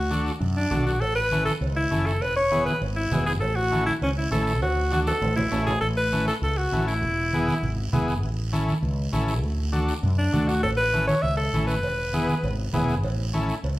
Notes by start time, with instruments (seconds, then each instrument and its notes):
Already playing: fretless electric bass D2, alto saxophone F#4
0.11 transistor combo organ D4 F#4 A4, high conga, short guiro
0.26 short guiro
0.40 fretless electric bass F#2, low conga, long guiro
0.56 alto saxophone D4
0.70 fretless electric bass B1, transistor combo organ D4 F#4 A4, high conga, low conga, short guiro
0.86 alto saxophone F#4, short guiro
1.00 fretless electric bass A1, alto saxophone A4, cowbell, long guiro
1.15 alto saxophone B4
1.31 transistor combo organ C#4 E4 A4, high conga, short guiro
1.45 alto saxophone A4, high conga, short guiro
1.61 fretless electric bass C#2, cowbell, long guiro
1.76 alto saxophone E4
1.91 fretless electric bass F#1, transistor combo organ C#4 E4 A4, high conga, short guiro
2.06 alto saxophone A4, short guiro
2.21 fretless electric bass E1, alto saxophone B4, cowbell, long guiro
2.36 alto saxophone C#5
2.51 transistor combo organ B3 E4 G#4, high conga, short guiro
2.65 alto saxophone B4, high conga, short guiro
2.81 fretless electric bass G#1, cowbell, long guiro
2.96 alto saxophone E4
3.11 fretless electric bass E1, transistor combo organ B3 E4 G#4, high conga, low conga, low timbale, short guiro
3.26 alto saxophone G#4, short guiro
3.40 fretless electric bass A1, alto saxophone A4, cowbell, long guiro
3.56 alto saxophone F#4
3.71 transistor combo organ C#4 E4 A4, high conga, short guiro
3.87 alto saxophone E4, high conga, short guiro
4.01 fretless electric bass C#2, alto saxophone C#4, cowbell, long guiro
4.17 alto saxophone E4
4.31 fretless electric bass A1, transistor combo organ C#4 E4 A4, alto saxophone A4, high conga, low timbale, short guiro
4.47 short guiro
4.62 fretless electric bass D2, alto saxophone F#4, cowbell, long guiro
4.92 transistor combo organ D4 F#4 A4, alto saxophone F#4, high conga, short guiro
5.07 alto saxophone A4, high conga, high timbale, short guiro
5.21 fretless electric bass A1, cowbell, high conga, low timbale, long guiro
5.36 alto saxophone E4, low conga, low timbale
5.52 fretless electric bass A1, transistor combo organ C#4 E4 A4, low timbale, short guiro
5.67 alto saxophone G#4, low conga, low timbale, short guiro
5.81 fretless electric bass A1, alto saxophone A4, long guiro
5.97 alto saxophone B4
6.12 transistor combo organ C#4 E4 A4, high conga, short guiro
6.28 alto saxophone A4, short guiro
6.42 fretless electric bass C#2, alto saxophone A4, long guiro
6.58 alto saxophone F#4
6.72 fretless electric bass A1, transistor combo organ C#4 E4 A4, high conga, short guiro
6.87 alto saxophone E4, short guiro
7.02 fretless electric bass E1, long guiro
7.33 transistor combo organ B3 E4 G#4, high conga, short guiro
7.48 high conga, short guiro
7.63 fretless electric bass G#1, low conga, long guiro
7.93 fretless electric bass E1, transistor combo organ B3 E4 G#4, high conga, low conga, short guiro
8.08 short guiro
8.22 fretless electric bass A1, long guiro
8.53 transistor combo organ C#4 E4 A4, high conga, short guiro
8.68 high conga, short guiro
8.82 fretless electric bass C#2, long guiro
9.13 fretless electric bass A1, transistor combo organ C#4 E4 A4, high conga, short guiro
9.28 short guiro
9.43 fretless electric bass D2, long guiro
9.72 transistor combo organ D4 F#4 A4, high conga, short guiro
9.88 short guiro
10.03 fretless electric bass F#2, low conga, long guiro
10.18 alto saxophone D4
10.33 fretless electric bass D2, transistor combo organ D4 F#4 A4, high conga, low conga, short guiro
10.48 alto saxophone F#4, short guiro
10.62 fretless electric bass A1, alto saxophone A4, cowbell, long guiro
10.77 alto saxophone B4
10.93 transistor combo organ C#4 E4 A4, high conga, short guiro
11.07 alto saxophone C#5, high conga, short guiro
11.22 fretless electric bass C#2, alto saxophone E5, cowbell, long guiro
11.37 alto saxophone A4
11.53 fretless electric bass A1, transistor combo organ C#4 E4 A4, high conga, short guiro
11.67 alto saxophone B4, short guiro
11.83 fretless electric bass E1, cowbell, long guiro
12.13 transistor combo organ B3 E4 G#4, high conga, short guiro
12.29 high conga, short guiro
12.43 fretless electric bass G#1, cowbell, low conga, long guiro
12.73 fretless electric bass E1, transistor combo organ B3 E4 G#4, high conga, low conga, low timbale, short guiro
12.89 short guiro
13.03 fretless electric bass A1, cowbell, long guiro
13.33 transistor combo organ C#4 E4 A4, high conga, short guiro
13.49 short guiro
13.63 fretless electric bass C#2, cowbell, long guiro